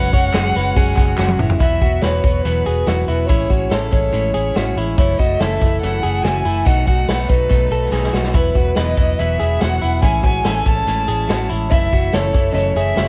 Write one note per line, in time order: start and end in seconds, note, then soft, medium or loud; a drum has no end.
0.00 0.13 F#3 medium
0.00 0.13 G#3 medium
0.00 0.14 C#4 medium
0.00 0.12 F#4 medium
0.00 0.13 B4 loud
0.00 1.40 F#5 loud
0.13 0.30 F#1 medium
0.13 0.34 G#3 soft
0.13 0.34 C#4 medium
0.13 0.34 F#4 medium
0.13 0.34 C#5 medium
0.13 kick medium
0.13 hi-hat pedal medium
0.13 open hi-hat medium
0.33 0.51 F#1 loud
0.33 0.55 F#3 medium
0.33 0.56 G#3 medium
0.33 0.55 C#4 medium
0.33 0.54 F#4 medium
0.33 0.55 G#4 medium
0.33 snare loud
0.33 clap medium
0.33 hi-hat pedal medium
0.33 open hi-hat medium
0.55 0.73 F#1 medium
0.55 0.75 G#3 medium
0.55 0.76 C#4 medium
0.55 0.76 F#4 medium
0.55 0.77 B4 medium
0.55 snare soft
0.55 hi-hat pedal medium
0.55 open hi-hat medium
0.75 0.94 F#1 medium
0.75 0.97 F#3 medium
0.75 0.97 G#3 medium
0.75 0.98 C#4 medium
0.75 0.96 F#4 medium
0.75 1.16 G#4 medium
0.75 kick medium
0.75 hi-hat pedal medium
0.75 open hi-hat medium
0.96 1.14 F#1 medium
0.96 1.18 G#3 soft
0.96 1.19 C#4 medium
0.96 1.18 F#4 medium
0.96 kick medium
0.96 clap medium
0.96 hi-hat pedal medium
0.96 open hi-hat medium
1.17 1.36 F#1 loud
1.17 1.39 F#3 medium
1.17 1.40 G#3 medium
1.17 1.40 C#4 medium
1.17 1.40 F#4 medium
1.17 1.38 F#4 loud
1.17 snare medium
1.17 clap loud
1.28 high tom medium
1.39 1.57 F#1 loud
1.39 1.61 G#3 medium
1.39 1.61 C#4 medium
1.39 1.59 E4 medium
1.39 1.60 F#4 medium
1.39 mid tom medium
1.50 floor tom medium
1.60 1.78 E1 medium
1.60 1.82 E3 medium
1.60 1.82 F#3 medium
1.60 1.82 B3 medium
1.60 1.81 E4 medium
1.60 1.82 F#4 medium
1.60 2.03 E5 medium
1.60 kick loud
1.60 closed hi-hat medium
1.81 1.99 E1 medium
1.81 2.02 F#3 soft
1.81 2.04 B3 soft
1.81 2.03 F#4 medium
1.81 2.03 F#4 soft
1.81 kick medium
1.81 closed hi-hat medium
2.02 2.20 E1 medium
2.02 2.24 E3 medium
2.02 2.24 F#3 medium
2.02 2.25 B3 medium
2.02 2.24 F#4 medium
2.02 2.63 B4 medium
2.02 2.46 C#5 medium
2.02 snare loud
2.02 closed hi-hat medium
2.24 2.41 E1 medium
2.24 2.44 F#3 soft
2.24 2.45 B3 soft
2.24 2.45 F#4 medium
2.24 kick medium
2.24 closed hi-hat medium
2.45 2.62 E1 medium
2.45 2.66 E3 medium
2.45 2.66 F#3 medium
2.45 2.67 B3 medium
2.45 2.65 F#4 medium
2.45 3.06 B4 medium
2.45 closed hi-hat medium
2.66 2.84 E1 medium
2.66 2.86 F#3 soft
2.66 2.87 B3 soft
2.66 2.87 F#4 soft
2.66 2.87 G#4 medium
2.66 closed hi-hat medium
2.87 3.04 E1 medium
2.87 3.08 E3 medium
2.87 3.08 F#3 medium
2.87 3.08 B3 medium
2.87 3.08 F#4 medium
2.87 3.07 F#4 medium
2.87 snare loud
2.87 closed hi-hat medium
3.07 3.25 E1 loud
3.07 3.29 F#3 soft
3.07 3.30 B3 soft
3.07 3.28 E4 medium
3.07 3.29 F#4 soft
3.07 3.27 B4 medium
3.07 closed hi-hat medium
3.26 3.46 A1 loud
3.26 3.49 A2 medium
3.26 3.50 E3 medium
3.26 3.50 G#3 medium
3.26 3.50 E4 medium
3.26 3.68 C#5 medium
3.26 kick loud
3.26 closed hi-hat medium
3.30 3.51 C#4 medium
3.30 3.49 E4 medium
3.50 3.67 A1 medium
3.50 3.70 G#3 soft
3.50 3.71 C#4 soft
3.50 3.71 E4 soft
3.50 3.71 F#4 medium
3.50 kick medium
3.50 closed hi-hat medium
3.69 3.89 A1 medium
3.69 3.92 E3 medium
3.69 3.92 G#3 medium
3.69 3.92 C#4 medium
3.69 3.90 E4 medium
3.69 4.31 A4 medium
3.69 3.79 C#5 medium
3.69 snare loud
3.69 closed hi-hat medium
3.91 4.10 A1 medium
3.91 4.12 G#3 soft
3.91 4.12 C#4 soft
3.91 4.13 E4 soft
3.91 4.72 C#5 medium
3.91 kick medium
3.91 closed hi-hat medium
4.12 4.30 A1 medium
4.12 4.34 A2 medium
4.12 4.34 E3 medium
4.12 4.34 G#3 medium
4.12 4.34 C#4 medium
4.12 4.32 E4 medium
4.12 closed hi-hat medium
4.34 4.52 A1 medium
4.34 4.55 G#3 soft
4.34 4.56 C#4 soft
4.34 4.55 E4 soft
4.34 4.55 G#4 medium
4.34 closed hi-hat medium
4.55 4.73 A1 medium
4.55 4.76 E3 medium
4.55 4.77 G#3 medium
4.55 4.76 C#4 medium
4.55 4.75 E4 medium
4.55 4.77 F#4 medium
4.55 snare loud
4.55 closed hi-hat medium
4.76 4.94 A1 medium
4.76 4.99 G#3 soft
4.76 4.98 C#4 medium
4.76 4.97 E4 medium
4.76 closed hi-hat medium
4.97 5.15 F#1 loud
4.97 5.19 F#2 medium
4.97 5.19 C#3 medium
4.97 5.20 E3 medium
4.97 5.20 A3 medium
4.97 5.19 E4 medium
4.97 5.18 E4 medium
4.97 5.19 C#5 medium
4.97 kick loud
4.97 closed hi-hat medium
5.18 5.36 F#1 medium
5.18 5.41 A3 soft
5.18 5.40 E4 soft
5.18 5.40 F#4 medium
5.18 5.41 D#5 medium
5.18 kick medium
5.18 closed hi-hat medium
5.22 5.40 E3 soft
5.40 5.57 F#1 loud
5.40 5.61 C#3 medium
5.40 5.61 E3 medium
5.40 5.60 A3 medium
5.40 5.59 E4 medium
5.40 5.99 A4 medium
5.40 5.81 E5 medium
5.40 snare loud
5.40 closed hi-hat medium
5.60 5.78 F#1 medium
5.60 5.82 E3 soft
5.60 5.82 A3 medium
5.60 5.81 E4 soft
5.60 kick medium
5.60 snare soft
5.60 closed hi-hat medium
5.81 5.99 F#1 loud
5.81 6.03 F#2 medium
5.81 6.04 C#3 medium
5.81 6.04 E3 medium
5.81 6.04 A3 medium
5.81 6.02 E4 medium
5.81 6.24 F#5 medium
5.81 closed hi-hat medium
6.03 6.21 F#1 medium
6.03 6.23 E3 soft
6.03 6.24 A3 soft
6.03 6.24 E4 soft
6.03 6.24 G#4 medium
6.03 closed hi-hat medium
6.22 6.41 F#1 loud
6.22 6.45 C#3 medium
6.22 6.45 E3 medium
6.22 6.46 A3 medium
6.22 6.44 E4 medium
6.22 6.45 F#4 medium
6.22 6.67 G#5 loud
6.22 snare loud
6.22 closed hi-hat medium
6.45 6.62 F#1 medium
6.45 6.67 E3 soft
6.45 6.66 A3 medium
6.45 6.66 E4 medium
6.45 6.66 E4 soft
6.45 closed hi-hat medium
6.65 6.84 B1 medium
6.65 6.87 B2 medium
6.65 6.88 F#3 medium
6.65 6.88 A3 medium
6.65 6.87 D#4 medium
6.65 6.86 F#5 loud
6.65 kick loud
6.65 closed hi-hat medium
6.86 7.05 B1 medium
6.86 7.09 A3 soft
6.86 7.08 D#4 soft
6.86 7.09 F#4 medium
6.86 7.30 F#5 medium
6.86 kick medium
6.86 closed hi-hat medium
6.90 7.09 F#3 soft
7.08 7.25 B1 medium
7.08 7.29 B2 medium
7.08 7.30 F#3 medium
7.08 7.29 A3 medium
7.08 7.28 D#4 medium
7.08 7.68 B4 medium
7.08 snare loud
7.08 closed hi-hat medium
7.29 7.47 B1 medium
7.29 7.48 F#3 soft
7.29 7.48 A3 soft
7.29 7.49 D#4 medium
7.29 8.13 B4 medium
7.29 kick medium
7.29 closed hi-hat medium
7.49 7.68 B1 medium
7.49 7.71 B2 medium
7.49 7.71 F#3 medium
7.49 7.71 A3 medium
7.49 7.69 D#4 medium
7.49 kick medium
7.49 closed hi-hat medium
7.71 7.88 B1 medium
7.71 7.91 F#3 soft
7.71 7.92 A3 soft
7.71 7.92 D#4 soft
7.71 7.92 A4 medium
7.71 closed hi-hat medium
7.91 8.09 B1 medium
7.91 8.13 B2 medium
7.91 8.13 F#3 medium
7.91 8.13 A3 medium
7.91 8.12 D#4 medium
7.91 8.13 G#4 medium
7.91 snare medium
8.03 snare medium
8.13 8.36 B1 medium
8.13 8.33 F#3 soft
8.13 8.35 A3 medium
8.13 8.34 D#4 medium
8.13 8.34 F#4 medium
8.13 snare medium
8.24 snare medium
8.34 8.51 E1 loud
8.34 8.55 E3 medium
8.34 8.55 F#3 medium
8.34 8.55 B3 medium
8.34 8.55 E4 medium
8.34 8.53 E4 medium
8.34 8.79 B4 medium
8.34 kick loud
8.34 closed hi-hat medium
8.55 8.72 E1 medium
8.55 8.75 F#3 soft
8.55 8.76 B3 soft
8.55 8.76 E4 soft
8.55 8.77 F#4 medium
8.55 kick medium
8.55 closed hi-hat medium
8.75 8.94 E1 medium
8.75 8.97 E3 medium
8.75 8.97 F#3 medium
8.75 8.97 B3 medium
8.75 8.96 E4 medium
8.75 9.36 B4 medium
8.75 9.20 D#5 medium
8.75 snare loud
8.75 closed hi-hat medium
8.96 9.15 E1 medium
8.96 9.18 F#3 soft
8.96 9.19 B3 soft
8.96 9.18 E4 medium
8.96 kick medium
8.96 closed hi-hat medium
9.19 9.36 E1 medium
9.19 9.40 E3 medium
9.19 9.40 F#3 medium
9.19 9.40 B3 medium
9.19 9.38 E4 medium
9.19 9.62 E5 medium
9.19 closed hi-hat medium
9.39 9.57 E1 medium
9.39 9.60 F#3 soft
9.39 9.61 B3 soft
9.39 9.60 E4 soft
9.39 9.61 G#4 medium
9.39 closed hi-hat medium
9.60 9.79 E1 medium
9.60 9.81 E3 medium
9.60 9.82 F#3 medium
9.60 9.82 B3 medium
9.60 9.80 E4 medium
9.60 9.81 F#4 medium
9.60 10.02 F#5 loud
9.60 snare loud
9.60 closed hi-hat medium
9.82 9.99 E1 medium
9.82 10.04 F#3 soft
9.82 10.03 B3 soft
9.82 10.01 E4 medium
9.82 10.03 E4 medium
9.82 closed hi-hat medium
10.02 10.20 A1 loud
10.02 10.24 A2 medium
10.02 10.24 E3 medium
10.02 10.24 G#3 medium
10.02 10.24 C#4 medium
10.02 10.23 E4 medium
10.02 10.22 G#5 loud
10.02 kick loud
10.02 closed hi-hat medium
10.23 10.41 A1 medium
10.23 10.44 C#4 soft
10.23 10.45 E4 medium
10.23 10.44 F#4 medium
10.23 10.68 G#5 loud
10.23 kick medium
10.23 closed hi-hat medium
10.27 10.44 G#3 soft
10.44 10.62 A1 medium
10.44 10.65 E3 medium
10.44 10.66 G#3 medium
10.44 10.66 C#4 medium
10.44 10.64 E4 medium
10.44 11.04 A4 medium
10.44 snare loud
10.44 closed hi-hat medium
10.65 10.83 A1 medium
10.65 10.87 G#3 soft
10.65 10.87 C#4 medium
10.65 10.87 E4 medium
10.65 11.50 A5 loud
10.65 kick medium
10.65 closed hi-hat medium
10.87 11.04 A1 loud
10.87 11.08 A2 medium
10.87 11.08 E3 medium
10.87 11.08 G#3 medium
10.87 11.07 C#4 medium
10.87 11.06 E4 medium
10.87 closed hi-hat medium
11.07 11.25 A1 loud
11.07 11.27 G#3 soft
11.07 11.28 C#4 medium
11.07 11.28 E4 medium
11.07 11.29 G#4 medium
11.07 closed hi-hat medium
11.27 11.47 A1 loud
11.27 11.49 E3 medium
11.27 11.50 G#3 medium
11.27 11.49 C#4 medium
11.27 11.48 E4 medium
11.27 11.50 F#4 medium
11.27 snare loud
11.27 closed hi-hat medium
11.49 11.68 A1 medium
11.49 11.70 G#3 soft
11.49 11.71 C#4 medium
11.49 11.70 E4 medium
11.49 closed hi-hat medium
11.70 11.88 F#1 loud
11.70 11.91 F#2 medium
11.70 11.92 C#3 medium
11.70 11.92 E3 medium
11.70 11.91 A3 medium
11.70 11.92 E4 loud
11.70 11.89 E4 medium
11.70 12.16 E5 loud
11.70 kick loud
11.70 closed hi-hat medium
11.90 12.09 F#1 medium
11.90 12.12 E3 soft
11.90 12.13 A3 soft
11.90 12.12 E4 medium
11.90 12.14 F#4 medium
11.90 kick medium
11.90 closed hi-hat medium
12.12 12.31 F#1 medium
12.12 12.33 C#3 medium
12.12 12.34 E3 medium
12.12 12.33 A3 medium
12.12 12.32 E4 medium
12.12 12.73 A4 medium
12.12 12.50 C#5 medium
12.12 snare loud
12.12 closed hi-hat medium
12.33 12.52 F#1 medium
12.33 12.53 E3 soft
12.33 12.53 A3 medium
12.33 12.53 E4 soft
12.33 kick medium
12.33 closed hi-hat medium
12.52 12.72 F#1 loud
12.52 12.75 F#2 medium
12.52 12.75 C#3 medium
12.52 12.75 E3 medium
12.52 12.75 A3 medium
12.52 12.73 E4 medium
12.52 12.78 C#5 medium
12.52 12.56 D#5 medium
12.56 closed hi-hat medium
12.74 12.93 F#1 medium
12.74 12.95 E3 soft
12.74 12.96 A3 soft
12.74 12.96 E4 soft
12.74 12.98 G#4 medium
12.74 13.08 E5 medium
12.74 closed hi-hat medium
12.95 13.08 F#1 loud
12.95 13.08 C#3 medium
12.95 13.08 E3 medium
12.95 13.08 A3 medium
12.95 13.08 E4 medium
12.95 13.08 F#4 medium
12.95 snare loud
12.95 closed hi-hat medium